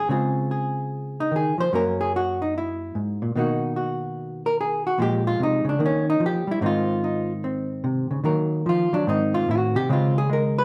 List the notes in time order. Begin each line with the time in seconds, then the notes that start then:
Already playing: G#4
0.09 C#3 G#3 C4 F4 G#4
0.51 G#4
1.20 D#4
1.31 D#3
1.36 G#4
1.58 F3 C5
1.73 F#2 F#3 A#3 C#4 A#4
2.01 G#4
2.16 F#4
2.42 D#4
2.58 E4
2.95 G#2
3.22 A#2
3.36 B2 D#3 A#3 D#4 F#4
3.76 F#4
4.46 A#4
4.61 G#4
4.87 F#4
4.99 A#2 F3 G#3 G4
5.27 F4
5.40 C3 D#4
5.65 C#3
5.69 D4
5.79 D#3 A#3
5.86 C#4
6.10 D#4
6.20 F3
6.26 G4
6.47 G3
6.51 E4
6.61 G#2 D#3 C4 D#4
6.66 F4
7.04 D#4
7.44 C4
7.84 C3
8.11 C#3
8.24 D#3 F#3 A#3 A#4
8.66 F3 F4
8.93 F#3 D4
9.07 G#2 D#3 C4 D#4
9.34 F4
9.48 A2 F#4
9.75 C3 G4
9.89 C#3 G#3 C4 F4
10.18 G#4
10.30 G#3 A#4
10.58 B4